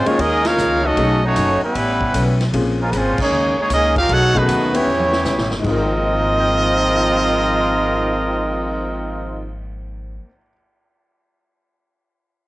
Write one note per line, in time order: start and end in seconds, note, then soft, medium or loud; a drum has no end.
0.05 0.20 F3 medium
0.05 0.18 G#3 medium
0.05 0.19 G#3 medium
0.05 0.18 A#3 medium
0.05 0.19 C4 medium
0.05 0.18 C#4 medium
0.05 0.20 C#4 medium
0.05 0.18 D#4 medium
0.05 0.19 F4 medium
0.05 0.18 F4 medium
0.05 0.19 C#5 loud
0.05 muted upright bass stroke soft
0.05 ride medium
0.18 0.57 D#2 medium
0.18 0.46 D#3 soft
0.18 0.45 G#3 medium
0.18 0.47 A#3 medium
0.18 0.44 A#3 medium
0.18 0.46 C#4 medium
0.18 0.47 C#4 medium
0.18 0.45 D#4 medium
0.18 0.45 G#4 loud
0.18 0.47 G#4 medium
0.18 0.44 A#4 medium
0.18 0.46 D#5 loud
0.18 kick soft
0.18 ride medium
0.45 0.84 A#3 medium
0.45 0.84 C#4 loud
0.45 0.84 D#4 loud
0.45 0.84 F4 medium
0.45 0.84 A#4 medium
0.45 0.84 C#5 loud
0.45 0.84 F5 loud
0.45 snare medium
0.45 ride medium
0.58 0.96 C#2 loud
0.58 0.86 D#3 medium
0.58 0.86 A#3 medium
0.58 0.87 C#4 medium
0.58 0.87 G#4 medium
0.58 hi-hat pedal medium
0.84 1.22 F#3 medium
0.84 1.22 A3 medium
0.84 1.24 C#4 medium
0.84 1.23 D#4 loud
0.84 1.23 F#4 loud
0.84 1.23 A4 loud
0.84 1.23 D#5 loud
0.96 1.35 B1 medium
0.96 1.24 B2 soft
0.96 1.20 F#3 medium
0.96 1.25 A3 medium
0.96 1.21 A3 medium
0.96 1.21 C#4 medium
0.96 1.21 D#4 medium
0.96 1.25 D#4 medium
0.96 1.21 G#4 medium
0.96 1.25 G#4 medium
0.96 kick soft
0.96 ride medium
1.23 1.60 F#3 medium
1.23 1.60 A3 medium
1.23 1.60 C#4 medium
1.23 1.60 D#4 medium
1.23 1.60 F#4 medium
1.23 1.60 C#5 loud
1.36 1.60 F#1 loud
1.36 1.64 B2 medium
1.36 1.64 A3 medium
1.36 1.64 D#4 medium
1.36 1.64 G#4 medium
1.36 kick soft
1.36 hi-hat pedal medium
1.36 ride medium
1.62 2.37 E3 medium
1.62 2.37 G3 medium
1.62 2.37 B3 medium
1.62 2.37 C#4 medium
1.62 2.37 E4 medium
1.62 2.37 B4 medium
1.62 muted upright bass stroke soft
1.75 2.13 A1 medium
1.75 2.02 A3 soft
1.75 2.03 C#4 medium
1.75 2.03 G4 medium
1.75 2.03 B4 medium
1.75 kick soft
1.75 ride medium
2.01 kick medium
2.14 2.52 B1 loud
2.14 2.41 A3 medium
2.14 2.42 C#4 medium
2.14 2.42 G4 medium
2.14 2.42 B4 medium
2.14 kick soft
2.14 hi-hat pedal medium
2.14 ride medium
2.41 snare medium
2.41 ride medium
2.53 2.91 A#1 medium
2.53 2.76 A#3 medium
2.53 2.80 A#3 medium
2.53 2.76 C4 medium
2.53 2.77 C#4 medium
2.53 2.81 C#4 medium
2.53 2.77 F4 medium
2.53 2.77 G#4 medium
2.53 2.81 G#4 medium
2.53 2.82 C5 medium
2.53 kick soft
2.53 ride medium
2.81 2.89 C#3 medium
2.81 2.89 F3 medium
2.81 2.90 G#3 medium
2.81 2.89 A#3 medium
2.81 2.90 C#4 medium
2.81 2.90 F4 medium
2.81 2.90 A#4 medium
2.91 3.17 G#1 loud
2.91 3.19 F3 medium
2.91 3.19 A#3 medium
2.91 3.19 C4 medium
2.91 3.19 C#4 medium
2.91 3.20 G#4 medium
2.91 2.93 B4 medium
2.91 3.20 C5 medium
2.91 kick soft
2.91 hi-hat pedal medium
2.91 ride medium
2.95 3.19 G#3 medium
2.95 3.20 G#3 medium
2.95 3.20 C#4 medium
2.95 3.20 F4 medium
2.95 3.20 C5 medium
3.18 3.55 G#3 medium
3.18 3.56 A#3 medium
3.18 3.56 C#4 medium
3.18 3.56 D#4 medium
3.18 3.56 G#4 medium
3.18 3.56 C#5 medium
3.18 muted upright bass stroke soft
3.18 kick loud
3.18 crash medium
3.31 3.55 D#2 medium
3.31 3.59 D#3 medium
3.31 3.59 A#3 medium
3.31 3.60 C#4 soft
3.31 3.60 G#4 medium
3.58 3.70 G#3 medium
3.58 3.70 A#3 medium
3.58 3.71 A#3 medium
3.58 3.70 C#4 medium
3.58 3.72 D#4 medium
3.58 3.72 G#4 medium
3.58 3.71 C#5 medium
3.58 muted upright bass stroke soft
3.70 4.08 C#2 loud
3.70 3.98 D#3 medium
3.70 3.96 G#3 medium
3.70 3.98 A#3 medium
3.70 3.96 A#3 medium
3.70 3.98 C#4 medium
3.70 3.96 C#4 medium
3.70 3.96 D#4 medium
3.70 3.98 G#4 medium
3.70 3.96 G#4 medium
3.70 3.96 A#4 loud
3.70 3.96 D#5 loud
3.70 kick soft
3.70 hi-hat pedal medium
3.70 ride medium
3.96 4.10 C#4 medium
3.96 4.09 F4 medium
3.96 4.10 G4 medium
3.96 4.10 A#4 medium
3.96 4.10 F5 loud
3.96 kick medium
3.96 ride medium
4.08 4.47 B1 medium
4.08 4.36 B2 medium
4.08 4.37 A3 medium
4.08 4.36 A3 medium
4.08 4.37 D#4 medium
4.08 4.36 D#4 medium
4.08 4.36 D#4 loud
4.08 4.36 F#4 medium
4.08 4.37 G#4 medium
4.08 4.36 A4 loud
4.08 4.36 C#5 loud
4.08 4.36 F#5 loud
4.08 kick soft
4.08 ride medium
4.34 4.75 D#3 medium
4.34 4.75 F#3 medium
4.34 4.71 A3 medium
4.34 4.75 A3 medium
4.34 4.75 B3 medium
4.34 4.71 C#4 medium
4.34 4.72 D#4 medium
4.34 4.75 D#4 medium
4.34 4.72 F#4 medium
4.34 4.75 F#4 medium
4.34 4.72 G#4 medium
4.34 4.75 B4 loud
4.34 kick medium
4.48 4.86 D#2 loud
4.48 4.75 B2 medium
4.48 4.76 A3 medium
4.48 4.76 D#4 medium
4.48 4.76 G#4 medium
4.48 kick soft
4.48 hi-hat pedal medium
4.48 ride medium
4.74 5.53 E3 medium
4.74 5.53 G3 medium
4.74 4.86 B3 medium
4.74 5.53 B3 medium
4.74 4.86 C#4 medium
4.74 5.52 C#4 medium
4.74 4.86 E4 medium
4.74 5.53 E4 medium
4.74 4.86 G4 medium
4.74 5.53 G4 medium
4.74 4.87 B4 medium
4.74 5.53 C#5 loud
4.74 ride medium
4.86 5.24 E2 medium
4.86 5.14 A2 soft
4.86 5.15 G3 medium
4.86 5.15 B3 medium
4.86 5.16 C#4 medium
5.00 high tom medium
5.13 snare medium
5.25 5.38 C#2 loud
5.25 5.53 A2 medium
5.25 5.54 G3 medium
5.25 5.54 B3 medium
5.25 5.54 C#4 medium
5.25 snare medium
5.25 hi-hat pedal medium
5.38 5.51 A1 medium
5.38 snare medium
5.51 5.64 G1 medium
5.51 snare loud
5.59 10.16 G#2 medium
5.59 10.19 G#3 medium
5.64 10.17 G#1 loud
5.64 9.54 G#2 loud
5.64 9.54 D#3 medium
5.64 9.54 F3 loud
5.64 10.23 F3 medium
5.64 9.54 C4 loud
5.64 10.22 C4 medium
5.64 9.54 C4 loud
5.64 9.54 F4 loud
5.64 10.25 F4 medium
5.64 9.54 A#4 medium
5.64 9.54 D#5 loud
5.64 kick medium
5.64 crash medium
5.71 10.29 A#3 medium
5.71 10.28 A#4 medium
5.78 10.34 C4 medium
5.91 cymbal swell soft
6.05 10.24 D#5 soft
6.12 10.28 G5 soft
6.21 10.32 A#5 soft
6.30 10.37 D#6 soft
6.40 10.42 G6 soft
6.50 10.47 A#6 soft
6.62 10.53 D#7 soft